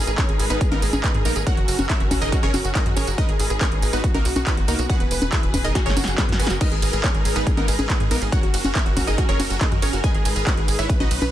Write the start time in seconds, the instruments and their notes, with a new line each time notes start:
Already playing: string section G#3 D#4 A#4 B4
0.07 analog synth bass G#1, synth pluck G#4, supersaw synth G#4, tambourine
0.18 supersaw synth C#4 G#4 A#4 C#5, synth pluck C#5, kick, clap, closed hi-hat, tambourine
0.29 analog synth bass G#1, supersaw synth G#4, synth pluck G#4, closed hi-hat
0.39 analog synth bass G#1, synth pluck G#4, supersaw synth G#4, open hi-hat, tambourine
0.50 analog synth bass G#1, supersaw synth B3 D#4 G#4 B4, synth pluck B4, closed hi-hat, tambourine
0.61 supersaw synth G#4, synth pluck G#4, kick, closed hi-hat, tambourine
0.72 analog synth bass G#1, supersaw synth A#3 B3 D#4 A#4, synth pluck A#4, closed hi-hat, high conga
0.82 analog synth bass G#1, synth pluck G#4, supersaw synth G#4, open hi-hat, tambourine
0.93 analog synth bass G#1, supersaw synth G#4, synth pluck G#4, closed hi-hat, tambourine, high conga
1.04 supersaw synth B3 D#4 G#4 B4, synth pluck B4, kick, clap, closed hi-hat, tambourine
1.14 analog synth bass G#2, synth pluck G#4, supersaw synth G#4, closed hi-hat
1.25 analog synth bass A#1, supersaw synth A#3 B3 D#4 A#4, synth pluck A#4, open hi-hat, tambourine
1.36 analog synth bass G#1, synth pluck G#4, supersaw synth G#4, closed hi-hat, tambourine
1.46 string section F#3 C#4 G#4, supersaw synth F#4 A#4 C#5 F#5, synth pluck F#5, kick, closed hi-hat, tambourine
1.57 analog synth bass F#1, synth pluck F#4, supersaw synth F#4, closed hi-hat
1.68 analog synth bass F#1, supersaw synth F#4, synth pluck F#4, open hi-hat, tambourine
1.79 analog synth bass F#1, supersaw synth F#4, synth pluck F#4, closed hi-hat, tambourine, high conga
1.89 supersaw synth E4 A#4 C#5 E5, synth pluck E5, kick, clap, closed hi-hat, tambourine
2.00 analog synth bass F#1, supersaw synth F#4, synth pluck F#4, closed hi-hat
2.11 analog synth bass F#1, supersaw synth F#4, synth pluck F#4, kick, open hi-hat, tambourine, high conga
2.21 analog synth bass F#1, supersaw synth D#4 G#4 A#4 D#5, synth pluck D#5, closed hi-hat, tambourine
2.32 supersaw synth F#4, synth pluck F#4, kick, closed hi-hat, tambourine
2.43 analog synth bass F#1, supersaw synth C#4 G#4 A#4 C#5, synth pluck C#5, closed hi-hat
2.54 analog synth bass F#1, supersaw synth F#4, synth pluck F#4, open hi-hat, tambourine, high conga
2.64 analog synth bass F#1, supersaw synth F#4, synth pluck F#4, closed hi-hat, tambourine
2.75 supersaw synth D#4 G#4 A#4 D#5, synth pluck D#5, kick, clap, closed hi-hat, tambourine
2.86 analog synth bass F#2, supersaw synth F#4, synth pluck F#4, closed hi-hat
2.96 analog synth bass G#1, supersaw synth C#4 G#4 A#4 C#5, synth pluck C#5, open hi-hat, tambourine
3.07 analog synth bass F#1, supersaw synth F#4, synth pluck F#4, closed hi-hat, tambourine
3.18 string section G#3 D#4 B4, supersaw synth D#4 A#4 B4 D#5, synth pluck D#5, kick, closed hi-hat
3.29 analog synth bass G#1, supersaw synth G#4, synth pluck G#4, closed hi-hat
3.39 analog synth bass G#1, supersaw synth G#4, synth pluck G#4, open hi-hat, tambourine
3.50 analog synth bass G#1, synth pluck G#4, supersaw synth G#4, closed hi-hat, tambourine
3.61 supersaw synth C#4 G#4 A#4 C#5, synth pluck C#5, kick, clap, closed hi-hat, tambourine
3.72 analog synth bass G#1, supersaw synth G#4, synth pluck G#4, closed hi-hat
3.82 analog synth bass G#1, supersaw synth G#4, synth pluck G#4, open hi-hat, tambourine
3.93 analog synth bass G#1, supersaw synth B3 D#4 F#4 B4, synth pluck B4, closed hi-hat, tambourine
4.04 string section B3 C#4, synth pluck F#4, supersaw synth F#4, kick, closed hi-hat, tambourine
4.14 analog synth bass B1, supersaw synth A#3 D#4 F#4 A#4, synth pluck A#4, closed hi-hat, high conga
4.25 analog synth bass B1, synth pluck F#4, supersaw synth F#4, open hi-hat, tambourine
4.36 analog synth bass B1, synth pluck F#4, supersaw synth F#4, closed hi-hat, tambourine, high conga
4.47 supersaw synth B3 D#4 F#4 B4, synth pluck B4, kick, clap, closed hi-hat, tambourine
4.57 analog synth bass F#1, supersaw synth F#4, synth pluck F#4, closed hi-hat
4.68 analog synth bass C#2, supersaw synth A#3 D#4 F#4 A#4, synth pluck A#4, open hi-hat, tambourine
4.79 analog synth bass B1, synth pluck F#4, supersaw synth F#4, closed hi-hat, tambourine
4.89 string section E3 F#4 G#4, supersaw synth F#4 G#4 B4 F#5, synth pluck F#5, kick, closed hi-hat, tambourine
5.00 analog synth bass E1, supersaw synth B4, synth pluck B4, closed hi-hat
5.11 analog synth bass E1, synth pluck B4, supersaw synth B4, open hi-hat, tambourine
5.22 analog synth bass E1, synth pluck B4, supersaw synth B4, closed hi-hat, tambourine, high conga
5.32 supersaw synth E4 G#4 B4 E5, synth pluck E5, kick, clap, closed hi-hat, tambourine
5.43 analog synth bass E1, supersaw synth B4, synth pluck B4, closed hi-hat
5.54 analog synth bass E1, supersaw synth B4, synth pluck B4, kick, open hi-hat, tambourine, high conga
5.64 analog synth bass E1, supersaw synth D#4 G#4 A#4 D#5, synth pluck D#5, closed hi-hat, tambourine
5.75 string section F#3 C#4 A#4, synth pluck F#4, supersaw synth F#4, kick, snare, closed hi-hat, tambourine
5.86 analog synth bass F#1, supersaw synth C#4 G#4 A#4 C#5, synth pluck C#5, snare, closed hi-hat
5.97 analog synth bass F#1, supersaw synth F#4, synth pluck F#4, open hi-hat, tambourine, high conga
6.04 analog synth bass F#1, synth pluck F#4, supersaw synth F#4, snare, closed hi-hat, tambourine
6.18 supersaw synth B3 F#4 G#4 B4, synth pluck B4, kick, snare, clap, closed hi-hat, tambourine
6.29 analog synth bass F#2, synth pluck F#4, supersaw synth F#4, snare, closed hi-hat
6.39 analog synth bass G#1, supersaw synth B3 F#4 G#4 B4, synth pluck B4, open hi-hat, tambourine
6.47 analog synth bass F#1, supersaw synth F#4, synth pluck F#4, snare, closed hi-hat, tambourine
6.61 string section G#3 D#4 B4, supersaw synth D#4 A#4 B4 D#5, synth pluck D#5, kick, closed hi-hat, crash, tambourine
6.72 analog synth bass G#1, synth pluck G#4, supersaw synth G#4, closed hi-hat
6.82 analog synth bass G#1, synth pluck G#4, supersaw synth G#4, open hi-hat, ride, tambourine
6.93 analog synth bass G#1, supersaw synth G#4, synth pluck G#4, closed hi-hat, tambourine
7.04 supersaw synth C#4 G#4 A#4 C#5, synth pluck C#5, kick, clap, closed hi-hat, tambourine
7.14 analog synth bass G#1, synth pluck G#4, supersaw synth G#4, closed hi-hat
7.25 analog synth bass G#1, supersaw synth G#4, synth pluck G#4, open hi-hat, ride, tambourine
7.36 analog synth bass G#1, supersaw synth B3 D#4 G#4 B4, synth pluck B4, closed hi-hat, tambourine
7.47 supersaw synth G#4, synth pluck G#4, kick, closed hi-hat, tambourine
7.57 analog synth bass G#1, supersaw synth A#3 B3 D#4 A#4, synth pluck A#4, closed hi-hat, high conga
7.68 analog synth bass G#1, supersaw synth G#4, synth pluck G#4, open hi-hat, ride, tambourine
7.79 analog synth bass G#1, supersaw synth G#4, synth pluck G#4, closed hi-hat, tambourine, high conga
7.89 supersaw synth B3 D#4 G#4 B4, synth pluck B4, kick, clap, closed hi-hat, tambourine
8.00 analog synth bass G#2, supersaw synth G#4, synth pluck G#4, closed hi-hat
8.11 analog synth bass A#1, supersaw synth A#3 B3 D#4 A#4, synth pluck A#4, open hi-hat, ride, tambourine
8.22 analog synth bass G#1, supersaw synth G#4, synth pluck G#4, closed hi-hat, tambourine
8.32 string section F#3 C#4 G#4 A#4, supersaw synth F#4 A#4 C#5 F#5, synth pluck F#5, kick, closed hi-hat, tambourine
8.43 analog synth bass F#1, supersaw synth F#4, synth pluck F#4, closed hi-hat
8.54 analog synth bass F#1, supersaw synth F#4, synth pluck F#4, open hi-hat, ride, tambourine
8.64 analog synth bass F#1, synth pluck F#4, supersaw synth F#4, tambourine, high conga
8.75 supersaw synth E4 A#4 C#5 E5, synth pluck E5, kick, clap, closed hi-hat, tambourine
8.86 analog synth bass F#1, synth pluck F#4, supersaw synth F#4, closed hi-hat
8.97 analog synth bass F#1, synth pluck F#4, supersaw synth F#4, kick, open hi-hat, ride, tambourine, high conga
9.07 analog synth bass F#1, supersaw synth D#4 G#4 A#4 D#5, synth pluck D#5, closed hi-hat, tambourine
9.18 synth pluck F#4, supersaw synth F#4, kick, closed hi-hat, tambourine
9.29 analog synth bass F#1, supersaw synth C#4 G#4 A#4 C#5, synth pluck C#5, closed hi-hat
9.39 analog synth bass F#1, synth pluck F#4, supersaw synth F#4, open hi-hat, ride, tambourine, high conga
9.50 analog synth bass F#1, synth pluck F#4, supersaw synth F#4, closed hi-hat, tambourine
9.61 supersaw synth D#4 G#4 A#4 D#5, synth pluck D#5, kick, clap, closed hi-hat, tambourine
9.71 analog synth bass F#2, synth pluck F#4, supersaw synth F#4, closed hi-hat
9.82 analog synth bass G#1, supersaw synth C#4 G#4 A#4 C#5, synth pluck C#5, open hi-hat, ride, tambourine
9.93 analog synth bass F#1, synth pluck F#4, supersaw synth F#4, closed hi-hat, tambourine
10.04 string section G#3 D#4 B4, supersaw synth G#4 B4 D#5 G#5, synth pluck G#5, kick, closed hi-hat, tambourine
10.14 analog synth bass G#1, synth pluck G#4, supersaw synth G#4, closed hi-hat
10.25 analog synth bass G#1, synth pluck G#4, supersaw synth G#4, open hi-hat, ride, tambourine
10.36 analog synth bass G#1, synth pluck G#4, supersaw synth G#4, closed hi-hat, tambourine
10.47 supersaw synth F#4 B4 D#5 F#5, synth pluck F#5, kick, clap, closed hi-hat, tambourine
10.57 analog synth bass G#1, synth pluck G#4, supersaw synth G#4, closed hi-hat
10.68 analog synth bass G#1, synth pluck G#4, supersaw synth G#4, open hi-hat, ride, tambourine
10.79 analog synth bass G#1, supersaw synth E4 B4 C#5 E5, synth pluck E5, closed hi-hat, tambourine
10.89 string section B3 C#4 D#4, supersaw synth B4, synth pluck B4, kick, closed hi-hat, tambourine
11.00 analog synth bass B1, supersaw synth D#4 F#4 B4 D#5, synth pluck D#5, closed hi-hat, high conga
11.11 analog synth bass B1, supersaw synth B4, synth pluck B4, open hi-hat, ride, tambourine
11.22 analog synth bass B1, supersaw synth B4, synth pluck B4, closed hi-hat, tambourine, high conga